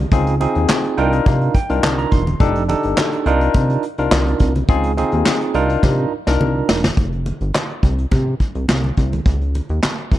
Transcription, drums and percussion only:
0.11 kick loud
0.11 closed hi-hat loud
0.11 muted conga soft
0.27 closed hi-hat medium
0.40 closed hi-hat medium
0.40 muted conga soft
0.55 closed hi-hat soft
0.69 snare loud
0.69 clap medium
0.69 high conga medium
0.84 closed hi-hat soft
0.97 closed hi-hat medium
1.12 closed hi-hat soft
1.26 kick loud
1.26 closed hi-hat medium
1.26 muted conga medium
1.26 low conga medium
1.41 closed hi-hat soft
1.54 kick medium
1.54 closed hi-hat medium
1.69 closed hi-hat medium
1.83 snare loud
1.83 clap loud
1.83 high conga medium
1.98 closed hi-hat medium
2.11 kick medium
2.11 closed hi-hat medium
2.27 closed hi-hat medium
2.27 high conga medium
2.40 kick loud
2.40 closed hi-hat medium
2.55 closed hi-hat medium
2.69 closed hi-hat medium
2.69 muted conga medium
2.83 closed hi-hat medium
2.97 snare loud
2.97 clap loud
2.97 high conga medium
3.12 closed hi-hat medium
3.26 closed hi-hat medium
3.41 closed hi-hat soft
3.54 kick loud
3.54 closed hi-hat loud
3.54 muted conga medium
3.70 closed hi-hat soft
3.83 closed hi-hat medium
3.98 closed hi-hat soft
4.11 snare loud
4.11 clap loud
4.11 high conga medium
4.27 closed hi-hat medium
4.39 kick medium
4.39 closed hi-hat medium
4.55 closed hi-hat medium
4.55 high conga medium
4.68 kick loud
4.68 closed hi-hat medium
4.83 closed hi-hat medium
4.97 closed hi-hat medium
4.97 muted conga medium
5.12 closed hi-hat soft
5.26 snare loud
5.26 clap medium
5.26 high conga medium
5.40 closed hi-hat soft
5.54 closed hi-hat medium
5.69 closed hi-hat medium
5.83 kick loud
5.83 snare medium
5.83 muted conga medium
5.83 low conga medium
6.27 snare medium
6.41 high conga medium
6.69 snare loud
6.84 snare medium
6.84 high conga medium
6.97 kick loud
6.97 closed hi-hat medium
6.97 muted conga soft
7.12 closed hi-hat soft
7.26 closed hi-hat medium
7.26 muted conga soft
7.41 closed hi-hat soft
7.55 snare loud
7.55 clap medium
7.55 high conga medium
7.69 closed hi-hat soft
7.83 kick medium
7.83 closed hi-hat medium
7.98 closed hi-hat soft
8.11 kick loud
8.11 closed hi-hat medium
8.11 muted conga medium
8.11 low conga medium
8.40 kick medium
8.40 closed hi-hat medium
8.55 closed hi-hat soft
8.68 snare loud
8.68 clap medium
8.68 high conga medium
8.84 high conga soft
8.97 kick medium
8.97 closed hi-hat medium
9.13 closed hi-hat soft
9.13 high conga medium
9.26 kick loud
9.26 closed hi-hat medium
9.41 closed hi-hat soft
9.54 closed hi-hat medium
9.54 muted conga soft
9.69 closed hi-hat soft
9.83 snare loud
9.83 clap medium
9.83 high conga medium
9.98 closed hi-hat soft
10.12 kick medium
10.12 closed hi-hat medium

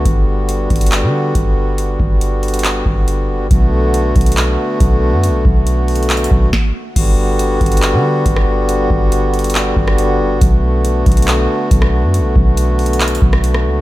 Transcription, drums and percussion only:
0.05 kick loud
0.05 closed hi-hat medium
0.49 closed hi-hat medium
0.70 kick medium
0.70 closed hi-hat soft
0.76 closed hi-hat medium
0.81 closed hi-hat medium
0.86 closed hi-hat medium
0.92 clap loud
0.92 closed hi-hat medium
1.35 kick medium
1.35 closed hi-hat medium
1.78 closed hi-hat medium
2.00 kick medium
2.21 closed hi-hat medium
2.43 closed hi-hat soft
2.48 closed hi-hat medium
2.54 closed hi-hat medium
2.59 closed hi-hat medium
2.64 clap loud
2.64 closed hi-hat medium
2.86 kick medium
3.08 closed hi-hat medium
3.51 kick loud
3.51 closed hi-hat medium
3.94 closed hi-hat medium
4.16 kick medium
4.16 closed hi-hat soft
4.21 closed hi-hat medium
4.26 closed hi-hat medium
4.32 closed hi-hat medium
4.37 clap loud
4.37 closed hi-hat medium
4.80 kick medium
4.80 closed hi-hat medium
5.24 closed hi-hat medium
5.45 kick medium
5.67 closed hi-hat medium
5.88 closed hi-hat soft
5.88 open hi-hat medium
5.95 closed hi-hat soft
6.03 closed hi-hat medium
6.10 clap loud
6.10 closed hi-hat medium
6.17 closed hi-hat medium
6.24 closed hi-hat medium
6.31 kick medium
6.53 kick loud
6.53 snare medium
6.96 kick loud
6.96 closed hi-hat medium
6.96 crash loud
7.39 closed hi-hat medium
7.61 kick loud
7.61 closed hi-hat soft
7.66 closed hi-hat medium
7.72 closed hi-hat medium
7.77 closed hi-hat medium
7.82 clap loud
7.82 closed hi-hat medium
8.26 kick loud
8.26 closed hi-hat medium
8.36 cross-stick loud
8.69 closed hi-hat medium
8.90 kick medium
9.12 closed hi-hat medium
9.34 closed hi-hat soft
9.39 closed hi-hat medium
9.44 closed hi-hat medium
9.50 closed hi-hat medium
9.55 clap loud
9.55 closed hi-hat medium
9.77 kick medium
9.88 cross-stick loud
9.98 closed hi-hat medium
10.41 kick loud
10.41 closed hi-hat medium
10.85 closed hi-hat medium
11.06 kick loud
11.06 closed hi-hat soft
11.12 closed hi-hat medium
11.17 closed hi-hat medium
11.22 closed hi-hat medium
11.28 clap loud
11.28 closed hi-hat medium
11.71 kick medium
11.71 closed hi-hat medium
11.82 cross-stick loud
12.14 closed hi-hat medium
12.36 kick medium
12.57 closed hi-hat medium
12.79 closed hi-hat soft
12.79 open hi-hat medium
12.86 closed hi-hat medium
12.93 closed hi-hat medium
13.00 clap loud
13.00 closed hi-hat medium
13.08 closed hi-hat medium
13.15 closed hi-hat medium
13.22 kick medium
13.33 cross-stick loud
13.44 closed hi-hat medium
13.54 cross-stick loud

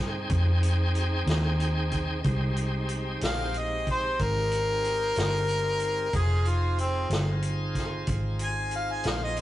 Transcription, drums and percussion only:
0.30 kick medium
0.30 closed hi-hat medium
0.63 closed hi-hat medium
0.95 closed hi-hat soft
1.27 snare medium
1.27 closed hi-hat medium
1.60 closed hi-hat soft
1.92 kick medium
1.92 closed hi-hat soft
2.24 kick medium
2.24 closed hi-hat medium
2.57 closed hi-hat soft
2.89 closed hi-hat soft
3.21 snare medium
3.21 closed hi-hat medium
3.54 closed hi-hat soft
3.87 kick medium
3.87 closed hi-hat soft
4.19 kick medium
4.19 closed hi-hat medium
4.52 closed hi-hat medium
4.84 closed hi-hat soft
5.16 snare medium
5.16 closed hi-hat medium
5.49 closed hi-hat soft
5.80 closed hi-hat soft
6.13 kick medium
6.13 closed hi-hat medium
6.45 closed hi-hat soft
6.78 closed hi-hat medium
7.10 snare medium
7.10 closed hi-hat medium
7.42 closed hi-hat medium
7.75 kick medium
7.75 snare soft
7.75 closed hi-hat medium
8.07 kick medium
8.07 closed hi-hat medium
8.39 closed hi-hat medium
8.71 closed hi-hat soft
9.04 snare medium
9.04 closed hi-hat medium
9.37 closed hi-hat soft

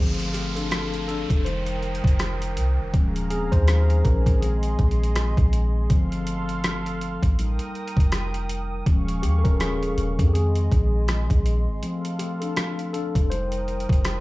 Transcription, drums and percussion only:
0.20 closed hi-hat soft
0.34 closed hi-hat medium
0.56 closed hi-hat soft
0.71 cross-stick loud
0.71 closed hi-hat medium
0.94 closed hi-hat soft
1.09 closed hi-hat soft
1.30 kick medium
1.30 closed hi-hat medium
1.46 closed hi-hat medium
1.66 closed hi-hat soft
1.83 closed hi-hat soft
1.95 closed hi-hat soft
2.04 kick medium
2.04 closed hi-hat medium
2.19 cross-stick loud
2.19 closed hi-hat medium
2.42 closed hi-hat medium
2.57 closed hi-hat medium
2.94 kick loud
2.94 closed hi-hat medium
3.16 closed hi-hat soft
3.30 closed hi-hat medium
3.52 kick medium
3.52 closed hi-hat soft
3.68 cross-stick loud
3.68 closed hi-hat medium
3.90 closed hi-hat soft
4.05 kick medium
4.05 closed hi-hat soft
4.26 kick medium
4.26 closed hi-hat medium
4.42 closed hi-hat medium
4.63 closed hi-hat soft
4.79 kick medium
4.79 closed hi-hat soft
4.91 closed hi-hat soft
5.03 closed hi-hat medium
5.15 cross-stick loud
5.15 closed hi-hat medium
5.37 kick loud
5.37 closed hi-hat soft
5.53 closed hi-hat medium
5.90 kick loud
5.90 closed hi-hat medium
6.12 closed hi-hat soft
6.27 closed hi-hat medium
6.49 closed hi-hat soft
6.64 cross-stick loud
6.64 closed hi-hat medium
6.86 closed hi-hat soft
7.01 closed hi-hat soft
7.23 kick medium
7.23 closed hi-hat medium
7.39 closed hi-hat medium
7.59 closed hi-hat soft
7.75 closed hi-hat soft
7.88 closed hi-hat soft
7.97 kick medium
7.97 closed hi-hat soft
8.12 cross-stick loud
8.12 closed hi-hat medium
8.34 closed hi-hat medium
8.49 closed hi-hat medium
8.86 kick loud
8.86 closed hi-hat medium
9.08 closed hi-hat soft
9.23 closed hi-hat medium
9.45 kick medium
9.45 closed hi-hat soft
9.60 cross-stick loud
9.60 closed hi-hat medium
9.83 closed hi-hat soft
9.98 closed hi-hat soft
10.19 kick medium
10.19 closed hi-hat medium
10.35 closed hi-hat medium
10.55 closed hi-hat soft
10.72 kick medium
10.72 closed hi-hat soft
11.08 cross-stick loud
11.08 closed hi-hat medium
11.30 kick loud
11.30 closed hi-hat soft
11.46 closed hi-hat medium
11.83 closed hi-hat medium
12.05 closed hi-hat medium
12.19 closed hi-hat medium
12.42 closed hi-hat soft
12.57 cross-stick loud
12.57 closed hi-hat medium
12.79 closed hi-hat soft
12.94 closed hi-hat soft
13.15 kick medium
13.15 closed hi-hat medium
13.32 closed hi-hat medium
13.52 closed hi-hat soft
13.68 closed hi-hat soft
13.80 closed hi-hat soft
13.89 kick medium
13.89 closed hi-hat soft
14.05 cross-stick loud
14.05 closed hi-hat medium

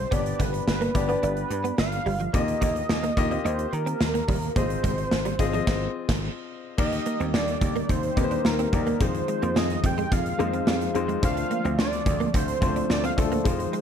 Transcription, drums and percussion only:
0.12 kick loud
0.12 closed hi-hat medium
0.26 closed hi-hat medium
0.40 kick medium
0.40 closed hi-hat medium
0.54 closed hi-hat soft
0.68 snare loud
0.82 closed hi-hat soft
0.95 kick medium
0.95 closed hi-hat medium
1.09 closed hi-hat soft
1.23 closed hi-hat medium
1.37 closed hi-hat soft
1.51 closed hi-hat medium
1.65 closed hi-hat soft
1.78 snare loud
1.92 closed hi-hat medium
2.06 open hi-hat medium
2.20 closed hi-hat soft
2.34 kick loud
2.34 closed hi-hat loud
2.48 closed hi-hat medium
2.62 kick medium
2.62 closed hi-hat medium
2.76 closed hi-hat soft
2.89 snare loud
3.04 closed hi-hat soft
3.17 kick medium
3.17 closed hi-hat medium
3.31 closed hi-hat soft
3.46 closed hi-hat medium
3.59 closed hi-hat soft
3.73 closed hi-hat medium
3.87 closed hi-hat medium
4.01 snare loud
4.15 closed hi-hat medium
4.28 kick medium
4.28 open hi-hat medium
4.42 closed hi-hat soft
4.56 kick loud
4.56 closed hi-hat medium
4.70 closed hi-hat medium
4.84 kick medium
4.84 closed hi-hat medium
4.98 closed hi-hat soft
5.11 snare loud
5.25 closed hi-hat medium
5.39 kick medium
5.39 closed hi-hat medium
5.53 closed hi-hat soft
5.67 kick loud
5.67 snare loud
5.67 crash medium
6.09 kick loud
6.09 snare loud
6.09 crash medium
6.78 kick loud
6.78 crash medium
6.92 closed hi-hat medium
7.06 closed hi-hat medium
7.20 closed hi-hat soft
7.34 snare loud
7.48 closed hi-hat medium
7.61 kick medium
7.61 closed hi-hat medium
7.76 closed hi-hat soft
7.89 kick medium
7.89 closed hi-hat medium
8.03 closed hi-hat soft
8.17 kick medium
8.17 closed hi-hat medium
8.31 closed hi-hat medium
8.45 snare loud
8.59 closed hi-hat medium
8.73 kick medium
8.73 closed hi-hat medium
8.87 closed hi-hat soft
9.01 kick loud
9.01 closed hi-hat loud
9.15 closed hi-hat medium
9.28 closed hi-hat medium
9.43 closed hi-hat soft
9.56 snare loud
9.70 closed hi-hat medium
9.84 kick medium
9.84 closed hi-hat medium
9.98 closed hi-hat soft
10.12 kick medium
10.12 closed hi-hat medium
10.26 closed hi-hat soft
10.40 closed hi-hat medium
10.53 closed hi-hat medium
10.67 snare loud
10.81 closed hi-hat medium
10.95 closed hi-hat medium
11.09 closed hi-hat soft
11.23 kick loud
11.23 closed hi-hat loud
11.37 closed hi-hat medium
11.51 closed hi-hat medium
11.65 closed hi-hat soft
11.79 snare loud
11.93 closed hi-hat medium
12.06 kick medium
12.06 closed hi-hat medium
12.20 closed hi-hat soft
12.34 kick medium
12.34 closed hi-hat medium
12.48 closed hi-hat soft
12.62 kick loud
12.62 closed hi-hat medium
12.76 closed hi-hat medium
12.90 snare loud
13.04 closed hi-hat medium
13.18 kick medium
13.18 closed hi-hat medium
13.32 closed hi-hat soft
13.45 kick loud
13.45 closed hi-hat medium
13.60 closed hi-hat medium
13.73 closed hi-hat medium

